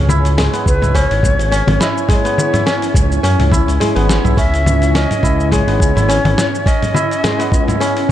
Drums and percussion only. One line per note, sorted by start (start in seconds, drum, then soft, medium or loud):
0.09 frame drum medium
0.09 shaker medium
0.25 open hi-hat soft
0.25 shaker soft
0.38 snare medium
0.38 mid tom medium
0.38 open hi-hat medium
0.38 shaker soft
0.54 open hi-hat soft
0.54 shaker soft
0.66 kick loud
0.66 shaker medium
0.82 mid tom medium
0.82 shaker soft
0.94 kick medium
0.94 open hi-hat medium
0.94 shaker soft
1.11 open hi-hat soft
1.23 kick loud
1.23 mid tom medium
1.23 shaker medium
1.39 open hi-hat soft
1.39 shaker soft
1.52 open hi-hat medium
1.52 shaker soft
1.67 mid tom medium
1.67 open hi-hat soft
1.67 frame drum medium
1.81 snare medium
1.81 shaker medium
1.98 shaker soft
2.09 kick loud
2.09 mid tom medium
2.09 open hi-hat medium
2.09 shaker soft
2.25 open hi-hat soft
2.25 shaker soft
2.38 frame drum medium
2.38 shaker medium
2.54 mid tom medium
2.54 open hi-hat soft
2.54 shaker soft
2.67 snare medium
2.67 open hi-hat medium
2.67 shaker soft
2.82 open hi-hat soft
2.82 shaker soft
2.94 kick loud
2.94 mid tom medium
2.94 shaker medium
3.12 shaker soft
3.24 open hi-hat medium
3.24 shaker soft
3.40 mid tom medium
3.40 open hi-hat soft
3.52 kick loud
3.52 frame drum medium
3.52 shaker medium
3.68 open hi-hat soft
3.68 shaker soft
3.81 mid tom medium
3.81 open hi-hat medium
3.81 shaker soft
3.96 open hi-hat soft
4.09 snare medium
4.09 shaker medium
4.25 mid tom medium
4.25 shaker soft
4.37 kick loud
4.37 open hi-hat medium
4.37 shaker soft
4.54 open hi-hat soft
4.54 shaker soft
4.66 mid tom medium
4.66 frame drum medium
4.66 shaker medium
4.82 open hi-hat soft
4.82 shaker soft
4.95 snare medium
4.95 open hi-hat medium
4.95 shaker soft
5.11 mid tom medium
5.11 open hi-hat soft
5.11 shaker soft
5.23 kick loud
5.23 shaker medium
5.40 shaker soft
5.52 kick medium
5.52 mid tom medium
5.52 open hi-hat medium
5.52 shaker soft
5.68 open hi-hat soft
5.80 kick loud
5.80 shaker medium
5.97 mid tom medium
5.97 open hi-hat soft
5.97 shaker soft
6.10 open hi-hat medium
6.10 shaker soft
6.25 open hi-hat soft
6.25 frame drum loud
6.38 snare medium
6.38 mid tom medium
6.38 shaker medium
6.55 shaker soft
6.66 kick loud
6.66 open hi-hat medium
6.66 shaker soft
6.83 mid tom medium
6.83 open hi-hat soft
6.83 shaker soft
6.94 frame drum medium
6.94 shaker medium
7.11 open hi-hat soft
7.11 shaker soft
7.24 snare medium
7.24 mid tom medium
7.24 open hi-hat medium
7.24 shaker soft
7.40 open hi-hat soft
7.40 shaker soft
7.52 kick loud
7.52 shaker medium
7.68 mid tom medium
7.68 shaker soft
7.81 open hi-hat medium
7.81 shaker soft
7.97 open hi-hat soft